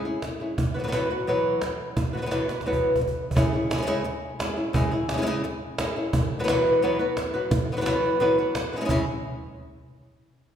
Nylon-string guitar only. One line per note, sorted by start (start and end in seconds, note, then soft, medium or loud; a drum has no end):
0.05 0.23 C#4 soft
0.05 0.22 E4 medium
0.05 0.22 G#4 medium
0.23 muted nylon-string guitar stroke medium
0.40 0.58 C#4 soft
0.40 0.57 E4 soft
0.40 0.57 G#4 medium
0.58 muted nylon-string guitar stroke medium
0.74 0.78 F#3 soft
0.74 0.78 B3 medium
0.74 0.79 F#4 medium
0.74 0.79 B4 medium
0.79 0.82 E3 soft
0.79 0.83 B3 soft
0.79 0.83 F#4 soft
0.79 0.83 B4 soft
0.84 0.86 E3 medium
0.84 0.92 E3 medium
0.84 0.87 F#3 medium
0.84 0.87 B3 medium
0.84 0.88 F#4 medium
0.84 0.88 B4 medium
0.88 1.09 B2 medium
0.88 0.92 F#3 medium
0.88 0.92 B3 medium
0.88 0.92 F#4 medium
0.88 0.92 B4 medium
0.93 1.09 E3 medium
0.93 1.09 F#3 medium
0.93 1.10 B3 medium
0.93 1.09 F#4 medium
0.93 1.09 B4 medium
1.10 1.27 F#3 soft
1.10 1.27 B3 soft
1.10 1.27 F#4 medium
1.10 1.27 B4 medium
1.27 1.61 B2 medium
1.27 1.61 E3 medium
1.27 1.61 F#3 medium
1.27 1.62 B3 medium
1.27 1.62 F#4 medium
1.27 1.62 B4 medium
1.62 muted nylon-string guitar stroke medium
1.97 muted nylon-string guitar stroke medium
2.13 2.20 E3 soft
2.13 2.17 F#3 soft
2.13 2.16 B3 soft
2.13 2.17 F#4 medium
2.13 2.17 B4 medium
2.18 2.21 B3 soft
2.18 2.21 F#4 soft
2.18 2.22 B4 soft
2.22 2.25 E3 soft
2.22 2.25 F#3 medium
2.22 2.26 B3 medium
2.22 2.26 F#4 medium
2.22 2.26 B4 medium
2.26 2.30 E3 medium
2.26 2.30 F#3 medium
2.26 2.30 B3 medium
2.26 2.31 F#4 medium
2.26 2.31 B4 medium
2.31 2.48 B2 medium
2.31 2.48 E3 medium
2.31 2.48 F#3 medium
2.31 2.48 B3 medium
2.31 2.48 F#4 medium
2.31 2.47 B4 medium
2.48 2.65 F#3 soft
2.48 2.65 B3 soft
2.48 2.66 F#4 soft
2.48 2.65 B4 medium
2.66 2.99 B2 medium
2.66 3.00 E3 medium
2.66 3.00 F#3 medium
2.66 3.00 B3 medium
2.66 3.00 F#4 medium
2.66 3.01 B4 medium
3.01 muted nylon-string guitar stroke medium
3.35 3.52 C#3 medium
3.35 3.53 G#3 medium
3.35 3.53 C#4 medium
3.35 3.53 E4 medium
3.35 3.52 G#4 medium
3.53 3.71 C#4 medium
3.53 3.70 E4 medium
3.53 3.69 G#4 medium
3.70 3.77 G#3 medium
3.70 3.74 C#4 soft
3.70 3.73 E4 soft
3.70 3.73 G#4 medium
3.74 3.81 G#3 medium
3.74 3.81 C#4 medium
3.74 3.77 E4 medium
3.74 3.78 G#4 medium
3.79 3.86 G#3 medium
3.79 3.82 E4 medium
3.79 3.82 G#4 medium
3.83 4.03 C#3 medium
3.83 3.86 C#4 medium
3.83 3.86 E4 medium
3.83 3.87 G#4 medium
3.87 4.03 G#3 medium
3.87 4.03 C#4 loud
3.87 4.04 E4 loud
3.87 4.04 G#4 loud
4.04 muted nylon-string guitar stroke medium
4.39 4.56 G#3 medium
4.39 4.57 C#4 medium
4.39 4.56 E4 medium
4.39 4.55 G#4 medium
4.56 4.73 C#4 soft
4.56 4.74 E4 medium
4.56 4.74 G#4 medium
4.73 4.91 C#3 medium
4.73 4.91 G#3 medium
4.73 4.91 C#4 medium
4.73 4.92 E4 medium
4.73 4.90 G#4 medium
4.91 5.09 C#4 soft
4.91 5.08 E4 medium
4.91 5.07 G#4 medium
5.08 5.12 C#4 soft
5.08 5.13 E4 medium
5.08 5.13 G#4 medium
5.13 5.16 G#3 medium
5.13 5.17 C#4 medium
5.13 5.17 E4 medium
5.13 5.18 G#4 medium
5.17 5.21 G#3 medium
5.17 5.21 C#4 medium
5.17 5.22 E4 medium
5.17 5.22 G#4 medium
5.22 5.25 G#3 medium
5.22 5.26 C#4 medium
5.22 5.26 E4 medium
5.22 5.26 G#4 medium
5.26 5.43 C#3 medium
5.26 5.43 G#3 medium
5.26 5.43 C#4 medium
5.26 5.44 E4 medium
5.26 5.43 G#4 loud
5.44 muted nylon-string guitar stroke medium
5.78 5.95 G#3 medium
5.78 5.95 C#4 medium
5.78 5.96 E4 medium
5.78 5.95 G#4 medium
5.96 6.14 C#4 soft
5.96 6.13 E4 soft
5.96 6.13 G#4 medium
6.14 muted nylon-string guitar stroke medium
6.39 6.43 E3 medium
6.39 6.43 F#3 medium
6.39 6.43 B3 medium
6.39 6.43 F#4 medium
6.39 6.44 B4 medium
6.44 6.48 E3 medium
6.44 6.48 F#3 medium
6.44 6.48 B3 medium
6.44 6.48 F#4 medium
6.44 6.48 B4 medium
6.48 6.81 B2 medium
6.48 6.81 E3 medium
6.48 6.82 F#3 medium
6.48 6.82 B3 medium
6.48 6.83 F#4 medium
6.48 6.83 B4 medium
6.82 6.99 B2 medium
6.82 6.99 E3 medium
6.82 7.00 F#3 medium
6.82 6.99 B3 loud
6.82 6.99 F#4 loud
6.82 6.98 B4 loud
6.99 7.16 F#3 medium
6.99 7.16 B3 medium
6.99 7.17 F#4 medium
6.99 7.16 B4 medium
7.17 muted nylon-string guitar stroke medium
7.34 7.52 F#3 soft
7.34 7.51 B3 medium
7.34 7.51 F#4 soft
7.34 7.51 B4 medium
7.51 muted nylon-string guitar stroke medium
7.72 7.75 E3 medium
7.72 7.76 F#3 medium
7.72 7.76 B3 medium
7.72 7.76 F#4 medium
7.72 7.77 B4 medium
7.77 7.80 E3 medium
7.77 7.80 F#3 medium
7.77 7.81 B3 medium
7.77 7.81 F#4 medium
7.77 7.81 B4 medium
7.81 7.85 E3 medium
7.81 7.85 F#3 medium
7.81 7.85 B3 medium
7.81 7.86 F#4 medium
7.81 7.86 B4 medium
7.86 8.19 B2 medium
7.86 8.19 E3 medium
7.86 8.20 F#3 medium
7.86 8.20 B3 medium
7.86 8.20 F#4 medium
7.86 8.21 B4 medium
8.20 8.37 B2 loud
8.20 8.37 E3 medium
8.20 8.38 F#3 medium
8.20 8.38 B3 medium
8.20 8.38 F#4 medium
8.20 8.37 B4 medium
8.38 8.55 F#3 soft
8.38 8.55 B3 medium
8.38 8.55 F#4 medium
8.38 8.55 B4 medium
8.56 muted nylon-string guitar stroke medium
8.73 8.80 G#3 medium
8.73 8.76 B3 soft
8.73 8.80 C#4 medium
8.73 8.76 F#4 soft
8.73 8.77 B4 medium
8.77 8.84 G#3 medium
8.77 8.80 E4 medium
8.77 8.81 G#4 medium
8.81 8.89 G#3 medium
8.81 8.84 C#4 medium
8.81 8.85 E4 medium
8.81 8.85 G#4 medium
8.86 8.89 C#4 medium
8.86 8.89 E4 medium
8.86 8.90 G#4 medium
8.90 9.04 C#3 medium
8.90 9.04 G#3 loud
8.90 9.04 C#4 medium
8.90 9.04 E4 medium
8.90 9.04 G#4 loud